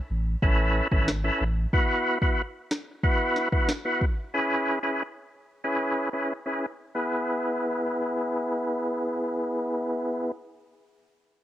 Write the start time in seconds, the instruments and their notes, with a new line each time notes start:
0.10 sub bass A1
0.43 sub bass A1, tonewheel organ C#4 E4 A4 B4, kick
0.92 sub bass G#1, tonewheel organ C#4 E4 A4 B4, kick
1.08 cross-stick, snare
1.24 tonewheel organ C#4 E4 A4 B4
1.41 sub bass A1
1.73 tonewheel organ B3 E4 F#4 B4, kick
2.22 tonewheel organ B3 E4 F#4 B4, kick
2.71 cross-stick, snare
3.03 tonewheel organ B3 E4 F#4 B4, kick
3.36 snare
3.52 tonewheel organ B3 E4 F#4 B4, kick
3.69 cross-stick, snare
3.85 tonewheel organ B3 E4 F#4 B4
4.01 kick
4.34 tonewheel organ C#4 E4 G#4 B4
4.83 tonewheel organ C#4 E4 G#4 B4
5.64 tonewheel organ C#4 E4 G#4 B4
6.13 tonewheel organ C#4 E4 G#4 B4
6.46 tonewheel organ C#4 E4 G#4 B4
6.94 tonewheel organ B3 E4 G#4 B4